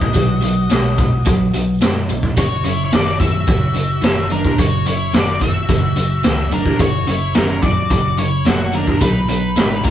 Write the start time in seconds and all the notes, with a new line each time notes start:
Already playing: B1 B2 G#3 F#4 D#5
0.01 kick
0.14 B1 B2 F#3, kick, closed hi-hat
0.42 B2 F#3, closed hi-hat
0.70 B1 B2 G#3, snare, closed hi-hat
0.98 B2 G#3, kick, closed hi-hat
1.26 B1 B2 F#3, kick, closed hi-hat
1.53 B1 B2 F#3, closed hi-hat
1.81 F#2 B2 G#3, snare, closed hi-hat
2.09 B1 B2 G#3, closed hi-hat
2.23 kick
2.37 F#1 F#2 C#3 F#4 C#5, kick, closed hi-hat
2.65 F#1 F#2 C#3 E4 C#5, closed hi-hat
2.85 E4 C#5
2.92 F#1 F#2 D#3 F#4 D5, snare, closed hi-hat
3.20 F#2 D#3 F#4 E5, kick, closed hi-hat
3.47 F#1 F#2 C#3, kick, closed hi-hat
3.75 F#2 C#3, closed hi-hat
4.02 F#1 F#2 D#3, snare, closed hi-hat
4.31 F#2 D#3 D4 A#4, closed hi-hat
4.45 kick
4.58 F#1 F#2 C#3 F#4 C#5, kick, closed hi-hat
4.86 F#2 C#3 E4 C#5, closed hi-hat
5.13 F#1 F#2 D#3 F#4 D5, snare, closed hi-hat
5.41 F#2 D#3 F#4 E5, kick, closed hi-hat
5.69 F#1 F#2 C#3, kick, closed hi-hat
5.96 F#1 F#2 C#3, closed hi-hat
6.24 C#2 F#2 D#3, snare, closed hi-hat
6.52 F#1 F#2 D#3 D4 A#4, closed hi-hat
6.66 kick
6.79 F#1 F#2 C#3 F#4 C#5, kick, closed hi-hat
7.07 F#1 F#2 C#3 E4 C#5, closed hi-hat
7.35 F#1 F#2 D#3 C#4 A#4, snare, closed hi-hat
7.62 F#2 D#3 F#4 D5, kick, closed hi-hat
7.90 F#1 F#2 C#3, kick, closed hi-hat
8.18 F#2 C#3 E4 C#5, closed hi-hat
8.46 F#1 F#2 D#3 A#3 F#4, snare, closed hi-hat
8.73 F#2 D#3 D4 A#4, closed hi-hat
8.87 kick
9.01 B1 B2 F#3 D#4 B4, kick, closed hi-hat
9.28 B2 F#3 D#4 B4, closed hi-hat
9.56 G#1 B2 G#3, snare, closed hi-hat
9.84 B2 G#3 C#4 A#4, kick, closed hi-hat